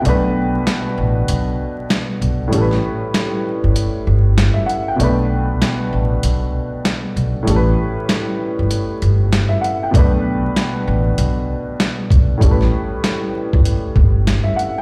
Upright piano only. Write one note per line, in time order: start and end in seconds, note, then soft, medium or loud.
0.00 2.46 B2 medium
0.00 2.47 A3 medium
0.00 0.22 G5 medium
0.06 2.49 D4 medium
0.06 2.50 B4 medium
2.48 4.93 A2 medium
2.48 4.94 G3 medium
2.52 4.95 C#4 medium
2.52 2.61 A4 medium
2.61 5.00 B4 medium
4.54 4.66 E5 medium
4.66 4.85 F#5 medium
4.88 5.17 G5 medium
4.96 7.41 B2 medium
4.96 7.42 A3 medium
5.01 7.43 D4 medium
5.01 7.45 B4 medium
7.43 9.88 A2 medium
7.43 9.89 G3 medium
7.47 9.90 C#4 medium
7.47 7.56 A4 medium
7.56 9.95 B4 medium
9.49 9.61 E5 medium
9.61 9.80 F#5 medium
9.83 10.12 G5 medium
9.91 12.36 B2 medium
9.91 12.37 A3 medium
9.96 12.38 D4 medium
9.96 12.39 B4 medium
12.37 14.82 A2 medium
12.37 14.82 G3 medium
12.42 14.82 C#4 medium
12.42 12.51 A4 medium
12.51 14.82 B4 medium
14.44 14.56 E5 medium
14.56 14.75 F#5 medium
14.78 14.82 G5 medium